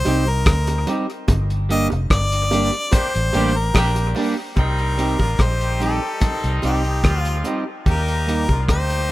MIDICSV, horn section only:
0, 0, Header, 1, 2, 480
1, 0, Start_track
1, 0, Tempo, 821918
1, 749, Time_signature, 4, 2, 24, 8
1, 5325, End_track
2, 0, Start_track
2, 0, Title_t, "Horn section"
2, 0, Program_c, 0, 61
2, 1705, Note_on_c, 0, 55, 87
2, 1705, Note_on_c, 0, 62, 89
2, 1705, Note_on_c, 0, 67, 94
2, 1706, Note_on_c, 0, 58, 78
2, 1813, Note_off_c, 0, 62, 0
2, 1814, Note_off_c, 0, 55, 0
2, 1814, Note_off_c, 0, 58, 0
2, 1814, Note_off_c, 0, 67, 0
2, 1948, Note_on_c, 0, 58, 94
2, 1949, Note_on_c, 0, 62, 94
2, 1950, Note_on_c, 0, 55, 98
2, 1950, Note_on_c, 0, 67, 106
2, 2055, Note_off_c, 0, 58, 0
2, 2056, Note_off_c, 0, 55, 0
2, 2056, Note_off_c, 0, 62, 0
2, 2056, Note_off_c, 0, 67, 0
2, 2187, Note_on_c, 0, 55, 91
2, 2187, Note_on_c, 0, 67, 99
2, 2188, Note_on_c, 0, 58, 91
2, 2189, Note_on_c, 0, 62, 94
2, 2536, Note_off_c, 0, 55, 0
2, 2536, Note_off_c, 0, 58, 0
2, 2536, Note_off_c, 0, 67, 0
2, 2537, Note_off_c, 0, 62, 0
2, 2664, Note_on_c, 0, 60, 94
2, 2665, Note_on_c, 0, 55, 107
2, 2666, Note_on_c, 0, 51, 92
2, 2666, Note_on_c, 0, 63, 100
2, 3011, Note_off_c, 0, 55, 0
2, 3011, Note_off_c, 0, 60, 0
2, 3012, Note_off_c, 0, 51, 0
2, 3012, Note_off_c, 0, 63, 0
2, 3029, Note_on_c, 0, 53, 67
2, 3029, Note_on_c, 0, 58, 73
2, 3029, Note_on_c, 0, 62, 69
2, 3029, Note_on_c, 0, 65, 73
2, 3122, Note_off_c, 0, 58, 0
2, 3123, Note_off_c, 0, 53, 0
2, 3123, Note_off_c, 0, 62, 0
2, 3123, Note_off_c, 0, 65, 0
2, 3146, Note_on_c, 0, 55, 88
2, 3146, Note_on_c, 0, 67, 96
2, 3148, Note_on_c, 0, 60, 92
2, 3148, Note_on_c, 0, 63, 89
2, 3605, Note_off_c, 0, 55, 0
2, 3605, Note_off_c, 0, 67, 0
2, 3606, Note_off_c, 0, 60, 0
2, 3606, Note_off_c, 0, 63, 0
2, 3624, Note_on_c, 0, 55, 99
2, 3626, Note_on_c, 0, 51, 102
2, 3626, Note_on_c, 0, 60, 91
2, 3626, Note_on_c, 0, 63, 111
2, 4085, Note_off_c, 0, 51, 0
2, 4085, Note_off_c, 0, 55, 0
2, 4085, Note_off_c, 0, 60, 0
2, 4085, Note_off_c, 0, 63, 0
2, 4107, Note_on_c, 0, 53, 93
2, 4107, Note_on_c, 0, 55, 87
2, 4107, Note_on_c, 0, 65, 101
2, 4109, Note_on_c, 0, 60, 86
2, 4454, Note_off_c, 0, 53, 0
2, 4454, Note_off_c, 0, 55, 0
2, 4454, Note_off_c, 0, 65, 0
2, 4455, Note_off_c, 0, 60, 0
2, 4587, Note_on_c, 0, 55, 92
2, 4587, Note_on_c, 0, 67, 100
2, 4589, Note_on_c, 0, 63, 88
2, 4591, Note_on_c, 0, 58, 94
2, 4934, Note_off_c, 0, 55, 0
2, 4934, Note_off_c, 0, 67, 0
2, 4935, Note_off_c, 0, 63, 0
2, 4936, Note_off_c, 0, 58, 0
2, 4962, Note_on_c, 0, 62, 68
2, 4964, Note_on_c, 0, 53, 73
2, 4964, Note_on_c, 0, 58, 70
2, 4964, Note_on_c, 0, 65, 79
2, 5052, Note_off_c, 0, 62, 0
2, 5053, Note_off_c, 0, 53, 0
2, 5053, Note_off_c, 0, 58, 0
2, 5053, Note_off_c, 0, 65, 0
2, 5073, Note_on_c, 0, 63, 86
2, 5074, Note_on_c, 0, 58, 88
2, 5075, Note_on_c, 0, 55, 91
2, 5075, Note_on_c, 0, 67, 99
2, 5325, Note_off_c, 0, 55, 0
2, 5325, Note_off_c, 0, 58, 0
2, 5325, Note_off_c, 0, 63, 0
2, 5325, Note_off_c, 0, 67, 0
2, 5325, End_track
0, 0, End_of_file